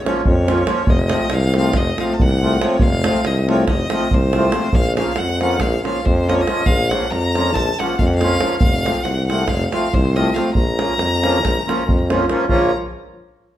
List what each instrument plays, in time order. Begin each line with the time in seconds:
0.04 accordion F3 A#3 C#4 F4, violin C#5, davul high
0.17 davul high
0.25 tuba F2, violin C#5, davul low
0.45 accordion F3 A#3 C#4 F4, davul high
0.58 davul high
0.65 accordion F3 A#3 C#4 F4, davul high
0.87 tuba F1, violin D#5, davul low
0.98 davul high
1.10 accordion F3 A3 C4 F4, davul high
1.20 davul high
1.30 tuba C2, davul high
1.34 violin F5
1.41 davul high
1.54 accordion F3 A3 C4 F4, davul high
1.58 violin F5
1.63 davul high
1.73 tuba F1, violin D#5, davul high, davul low
1.98 accordion F3 A3 C4 F4, violin F5, davul high
2.10 violin A5, davul high
2.20 tuba C2, violin F#5, davul low
2.30 davul high
2.41 accordion F3 A3 C4 F4
2.53 davul high
2.60 accordion F3 A3 C4 F4, violin C#5, davul high
2.79 tuba F1, violin F5, davul low
2.94 davul high
3.03 accordion F3 A3 C4 F4, davul high
3.15 davul high
3.25 tuba C2, violin D#5, davul high
3.38 davul high
3.46 accordion F3 A3 C4 F4, davul high
3.51 violin C#5
3.60 davul high
3.68 tuba F1, violin D#5, davul high, davul low
3.90 accordion F3 A3 C4 F4, davul high
4.00 davul high
4.11 tuba C2, violin C5, davul low
4.23 davul high
4.33 accordion F3 A3 C4 F4, davul high
4.42 davul high
4.52 accordion F3 A3 C4 F4, davul high
4.63 davul high
4.73 tuba A#1, violin F5, davul low
4.86 davul high
4.95 accordion F3 A#3 C#4 F4, violin F5, davul high
5.06 davul high
5.16 tuba F2, violin F#5, davul high
5.29 davul high
5.40 accordion F3 A#3 C#4 F4, violin F#5, davul high
5.51 davul high
5.60 tuba A#1, violin F5, davul high, davul low
5.83 accordion F3 A#3 C#4 F4, violin F5, davul high
5.96 davul high
6.06 tuba F2, violin C5, davul low
6.18 davul high
6.26 accordion F3 A#3 C#4 F4, violin D#5, davul high
6.35 violin C#5
6.39 violin D#5, davul high
6.46 accordion F3 A#3 C#4 F4, davul high
6.66 tuba A#1, violin F5, davul low
6.79 davul high
6.89 accordion F3 A#3 C#4 F4, violin F#5, davul high
7.02 davul high
7.11 tuba F2, violin A#5, davul high
7.35 accordion F3 A#3 C#4 F4, davul high
7.45 davul high
7.54 tuba A#1, violin A5, davul high, davul low
7.79 accordion F3 A#3 C#4 F4, violin F#5, davul high
7.89 davul high
7.99 tuba F2, violin F5, davul low
8.07 violin F#5, davul high
8.14 violin F5
8.21 accordion F3 A#3 C#4 F4, davul high
8.32 davul high
8.40 accordion F3 A#3 C#4 F4, davul high
8.59 tuba F1, violin F5, davul low
8.74 davul high
8.85 accordion F3 A3 C4 F4, davul high
8.96 davul high
9.04 tuba C2, violin F#5, davul high
9.18 davul high
9.27 accordion F3 A3 C4 F4, violin F#5, davul high
9.39 davul high
9.48 tuba F1, violin F5, davul high, davul low
9.70 accordion F3 A3 C4 F4, violin F5, davul high
9.84 davul high
9.93 tuba C2, violin C5, davul low
10.05 davul high
10.13 accordion F3 A3 C4 F4, violin D#5, davul high
10.26 davul high
10.33 accordion F3 A3 C4 F4, violin F5, davul high
10.54 tuba A#1, violin A#5, davul low
10.67 davul high
10.77 accordion F3 A#3 C#4 F4, davul high
10.90 davul high
10.98 tuba F2, davul high
11.11 davul high
11.21 accordion F3 A#3 C#4 F4, davul high
11.33 davul high
11.43 tuba A#1, davul high, davul low
11.56 davul high
11.66 accordion F3 A#3 C#4 F4, davul high
11.79 davul high
11.87 tuba F2, davul low
11.99 davul high
12.09 accordion F3 A#3 C#4 F4, davul high
12.20 davul high
12.28 accordion F3 A#3 C#4 F4, davul high
12.48 tuba A#1, accordion F3 A#3 C#4 F4, violin A#5, davul low